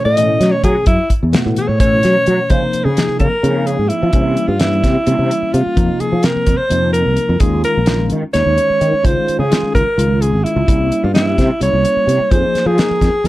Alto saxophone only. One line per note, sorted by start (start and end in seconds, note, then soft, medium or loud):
0.05 0.53 D#5 loud
0.52 0.63 C#5 medium
0.64 0.86 G#4 loud
0.87 1.10 E4 loud
1.58 1.69 G#4 medium
1.68 1.79 C#5 medium
1.80 2.52 C#5 loud
2.50 2.86 C5 loud
2.85 3.19 G#4 medium
3.19 3.68 A#4 medium
3.66 3.90 G#4 medium
3.88 4.49 E4 medium
4.47 4.61 F4 medium
4.60 5.54 E4 medium
5.53 6.02 F4 medium
6.00 6.26 G#4 medium
6.24 6.59 A#4 medium
6.57 6.92 C5 medium
6.93 7.41 A#4 medium
7.40 7.64 G#4 medium
7.65 8.08 A#4 medium
8.33 9.07 C#5 loud
9.05 9.39 C5 medium
9.40 9.72 G#4 medium
9.75 10.23 A#4 medium
10.21 10.45 G#4 medium
10.44 11.05 E4 medium
11.04 11.14 F4 medium
11.14 11.58 E4 medium
11.63 12.32 C#5 medium
12.31 12.68 C5 loud
12.67 13.28 G#4 loud